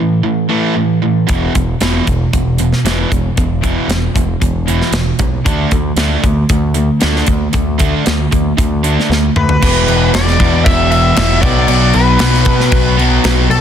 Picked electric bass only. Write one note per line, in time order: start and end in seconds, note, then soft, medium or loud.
1.29 1.48 E1 medium
1.56 1.74 E1 medium
1.81 2.00 E1 medium
2.07 2.26 E1 medium
2.34 2.72 E1 medium
2.84 3.04 E1 medium
3.12 3.31 E1 medium
3.37 3.76 E1 medium
3.88 4.08 E1 medium
4.15 4.34 E1 medium
4.42 4.80 E1 medium
4.92 5.12 E1 medium
5.19 5.39 B1 medium
5.47 5.65 D2 medium
5.72 5.91 D2 medium
5.96 6.16 D2 medium
6.24 6.43 D2 medium
6.50 6.89 D2 medium
7.03 7.22 D2 medium
7.28 7.47 D2 medium
7.54 7.93 D2 medium
8.07 8.26 D2 medium
8.32 8.51 D2 medium
8.58 8.96 D2 medium
9.09 9.29 D2 medium
9.36 9.55 D2 medium
9.62 9.85 E1 medium
9.87 10.10 E1 medium
10.14 10.36 E1 medium
10.40 10.63 E2 medium
10.66 11.12 E1 loud
11.17 11.40 E1 loud
11.43 11.66 B1 medium
11.68 11.91 B1 loud
11.95 12.18 B1 medium
12.20 12.43 B1 medium
12.46 12.69 B2 medium
12.72 13.18 B1 medium
13.25 13.47 B1 medium
13.49 13.61 B1 medium